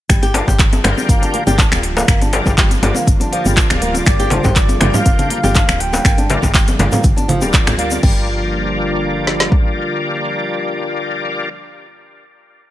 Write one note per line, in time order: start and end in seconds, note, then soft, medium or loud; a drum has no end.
0.09 0.42 G1 loud
0.09 7.99 D3 medium
0.09 7.99 F3 medium
0.09 0.22 G3 medium
0.09 7.99 G3 medium
0.09 7.99 A#3 medium
0.09 7.99 F4 medium
0.09 finger snap medium
0.09 kick loud
0.09 closed hi-hat medium
0.09 shaker medium
0.23 0.34 G4 loud
0.23 closed hi-hat soft
0.23 djembe tone medium
0.23 shaker soft
0.34 0.49 D4 medium
0.34 0.42 D4 medium
0.34 0.49 F4 medium
0.34 0.49 G4 medium
0.34 0.49 A#4 medium
0.34 0.49 D5 loud
0.34 open hi-hat loud
0.34 djembe slap loud
0.48 0.79 G1 medium
0.48 0.58 G4 loud
0.48 kick medium
0.48 djembe slap loud
0.48 djembe tone medium
0.48 shaker medium
0.59 kick loud
0.59 clap loud
0.59 closed hi-hat medium
0.59 shaker medium
0.73 closed hi-hat soft
0.73 djembe tone loud
0.73 shaker soft
0.84 0.94 G1 loud
0.84 1.44 D4 loud
0.84 1.44 F4 medium
0.84 1.44 G4 medium
0.84 1.44 A#4 medium
0.84 1.44 G5 loud
0.84 finger snap medium
0.84 open hi-hat medium
0.84 djembe slap loud
0.98 djembe tone loud
0.98 shaker medium
1.09 1.19 G1 medium
1.09 1.22 A#3 medium
1.09 kick loud
1.09 closed hi-hat medium
1.09 shaker medium
1.22 1.33 D4 medium
1.22 closed hi-hat soft
1.22 djembe tone medium
1.22 shaker soft
1.34 1.41 A#3 medium
1.34 open hi-hat medium
1.47 1.65 G1 loud
1.47 1.60 D4 medium
1.47 1.60 F4 medium
1.47 1.60 G4 medium
1.47 1.57 G4 loud
1.47 1.60 A#4 medium
1.47 1.60 D5 medium
1.47 closed hi-hat soft
1.47 djembe tone medium
1.47 shaker medium
1.58 1.66 D4 medium
1.58 kick loud
1.58 clap loud
1.58 closed hi-hat medium
1.58 shaker medium
1.71 2.03 D1 medium
1.71 1.85 D4 medium
1.71 1.85 F4 medium
1.71 1.85 G4 medium
1.71 1.85 A#4 medium
1.71 1.85 G5 medium
1.71 finger snap medium
1.71 closed hi-hat soft
1.71 djembe tone medium
1.71 shaker soft
1.83 open hi-hat loud
1.97 2.07 A#3 medium
1.97 djembe slap loud
1.97 djembe tone medium
1.97 shaker medium
2.08 2.41 G1 loud
2.08 2.21 A#3 medium
2.08 finger snap loud
2.08 kick loud
2.08 closed hi-hat medium
2.08 shaker medium
2.21 2.32 D4 medium
2.21 closed hi-hat soft
2.21 djembe tone medium
2.21 shaker soft
2.33 2.56 D4 loud
2.33 2.56 F4 medium
2.33 2.56 G4 medium
2.33 2.56 A#4 loud
2.33 2.56 D5 loud
2.33 open hi-hat loud
2.33 djembe slap loud
2.46 2.78 G1 medium
2.46 2.57 G3 medium
2.46 kick medium
2.46 djembe slap loud
2.46 djembe tone medium
2.46 shaker medium
2.58 2.70 G3 medium
2.58 kick loud
2.58 clap loud
2.58 closed hi-hat medium
2.58 shaker medium
2.71 closed hi-hat soft
2.71 djembe tone medium
2.71 shaker soft
2.83 2.92 G1 loud
2.83 2.97 D4 medium
2.83 2.97 F4 medium
2.83 2.97 G4 medium
2.83 2.97 A#4 medium
2.83 2.97 D5 medium
2.83 open hi-hat medium
2.83 djembe slap loud
2.95 3.06 A#3 medium
2.95 djembe tone loud
2.95 shaker medium
3.07 3.17 G1 medium
3.07 kick loud
3.07 closed hi-hat medium
3.07 shaker medium
3.20 3.31 D4 medium
3.20 closed hi-hat soft
3.20 djembe tone medium
3.20 shaker soft
3.32 3.44 F3 medium
3.32 4.29 D4 medium
3.32 4.29 F4 medium
3.32 4.29 G4 medium
3.32 4.29 A#4 medium
3.32 4.29 D5 medium
3.32 open hi-hat loud
3.45 3.63 G1 medium
3.45 3.56 G3 medium
3.45 closed hi-hat soft
3.45 djembe tone medium
3.45 shaker medium
3.57 kick loud
3.57 clap medium
3.57 closed hi-hat medium
3.57 shaker medium
3.70 4.02 D1 medium
3.70 finger snap loud
3.70 closed hi-hat soft
3.70 djembe tone medium
3.70 shaker soft
3.82 3.94 A#3 medium
3.82 open hi-hat medium
3.94 open hi-hat medium
3.94 djembe tone medium
3.94 shaker medium
4.06 4.39 G1 loud
4.06 4.19 G3 medium
4.06 4.34 D5 medium
4.06 finger snap loud
4.06 kick loud
4.06 closed hi-hat medium
4.06 shaker medium
4.20 4.31 G4 loud
4.20 closed hi-hat soft
4.20 djembe tone medium
4.20 shaker soft
4.30 4.38 D4 medium
4.30 4.46 D4 loud
4.30 4.46 F4 medium
4.30 4.46 G4 medium
4.30 4.46 A#4 medium
4.30 4.59 C5 medium
4.30 4.46 D5 loud
4.30 open hi-hat medium
4.30 djembe slap loud
4.30 high conga medium
4.44 4.76 G1 loud
4.44 4.55 G4 loud
4.44 kick medium
4.44 djembe slap loud
4.44 djembe tone loud
4.44 low conga medium
4.44 shaker medium
4.56 4.81 D5 medium
4.56 kick loud
4.56 clap loud
4.56 closed hi-hat medium
4.56 shaker medium
4.69 closed hi-hat soft
4.69 djembe tone medium
4.69 shaker soft
4.81 4.91 G1 loud
4.81 5.41 D4 loud
4.81 5.41 F4 medium
4.81 5.41 G4 medium
4.81 5.41 A#4 medium
4.81 4.96 D5 loud
4.81 5.41 G5 loud
4.81 finger snap medium
4.81 open hi-hat medium
4.81 djembe slap loud
4.81 high conga medium
4.94 5.30 F5 loud
4.94 djembe tone medium
4.94 low conga loud
4.94 shaker medium
5.05 5.16 G1 medium
5.05 5.18 A#3 medium
5.05 kick loud
5.05 closed hi-hat medium
5.05 shaker medium
5.19 5.29 D4 medium
5.19 closed hi-hat soft
5.19 djembe tone medium
5.19 high conga medium
5.19 shaker soft
5.30 5.37 A#3 medium
5.30 5.82 F5 loud
5.30 open hi-hat loud
5.43 5.62 G1 loud
5.43 5.57 D4 medium
5.43 5.57 F4 medium
5.43 5.54 G4 loud
5.43 5.57 G4 medium
5.43 5.57 A#4 medium
5.43 5.57 D5 loud
5.43 closed hi-hat soft
5.43 djembe tone loud
5.43 shaker medium
5.55 5.62 D4 medium
5.55 kick loud
5.55 clap loud
5.55 closed hi-hat medium
5.55 low conga medium
5.55 shaker medium
5.68 6.00 D1 medium
5.68 5.82 D4 medium
5.68 5.82 F4 medium
5.68 5.82 G4 medium
5.68 5.82 A#4 medium
5.68 5.82 G5 medium
5.68 finger snap loud
5.68 closed hi-hat soft
5.68 djembe tone medium
5.68 shaker soft
5.80 6.30 G5 loud
5.80 open hi-hat medium
5.93 6.03 A#3 medium
5.93 djembe slap loud
5.93 djembe tone loud
5.93 shaker medium
6.04 6.38 G1 medium
6.04 6.17 A#3 medium
6.04 finger snap loud
6.04 kick loud
6.04 closed hi-hat medium
6.04 shaker medium
6.18 6.28 D4 medium
6.18 closed hi-hat soft
6.18 djembe tone medium
6.18 shaker soft
6.29 6.52 D4 loud
6.29 6.52 F4 loud
6.29 6.52 G4 loud
6.29 6.52 A#4 loud
6.29 6.52 D5 loud
6.29 open hi-hat loud
6.29 djembe slap loud
6.29 high conga medium
6.42 6.75 G1 medium
6.42 6.53 G3 medium
6.42 kick medium
6.42 djembe slap loud
6.42 djembe tone medium
6.42 high conga medium
6.42 shaker medium
6.54 6.66 G3 medium
6.54 kick loud
6.54 clap loud
6.54 closed hi-hat medium
6.54 shaker medium
6.68 closed hi-hat soft
6.68 djembe tone medium
6.68 shaker soft
6.79 6.89 G1 loud
6.79 6.94 D4 medium
6.79 6.94 F4 medium
6.79 6.94 G4 medium
6.79 6.94 A#4 medium
6.79 6.94 D5 medium
6.79 open hi-hat medium
6.79 djembe slap loud
6.79 high conga medium
6.92 7.03 A#3 medium
6.92 closed hi-hat soft
6.92 djembe tone medium
6.92 low conga loud
6.92 shaker medium
7.03 7.44 G1 medium
7.03 kick loud
7.03 closed hi-hat medium
7.03 high conga medium
7.03 shaker medium
7.16 7.27 D4 medium
7.16 closed hi-hat soft
7.16 djembe tone medium
7.16 shaker soft
7.28 7.41 F3 medium
7.28 open hi-hat medium
7.28 high conga loud
7.41 7.68 D1 medium
7.41 7.52 G3 medium
7.41 7.76 D4 medium
7.41 7.76 F4 medium
7.41 7.76 G4 medium
7.41 7.76 A#4 medium
7.41 7.76 D5 medium
7.41 closed hi-hat soft
7.41 djembe tone loud
7.41 shaker medium
7.53 kick loud
7.53 clap loud
7.53 closed hi-hat medium
7.53 shaker medium
7.67 7.98 D2 medium
7.67 finger snap loud
7.67 closed hi-hat soft
7.67 djembe tone loud
7.67 low conga medium
7.67 shaker soft
7.78 7.90 A#3 medium
7.78 8.02 D4 medium
7.78 8.02 F4 medium
7.78 8.02 G4 medium
7.78 8.02 A#4 medium
7.78 8.02 D5 loud
7.78 open hi-hat medium
7.91 open hi-hat medium
7.91 djembe tone medium
7.91 shaker medium
8.03 9.48 G1 loud
8.03 11.49 D3 medium
8.03 11.49 F3 medium
8.03 8.26 G3 medium
8.03 11.49 G3 medium
8.03 11.49 A#3 medium
8.03 11.49 D4 medium
8.03 11.49 F4 medium
8.03 11.49 G4 medium
8.03 11.50 A#4 medium
8.03 11.49 D5 loud
8.03 kick loud
8.03 crash medium
9.27 snare medium
9.40 snare medium
9.52 kick medium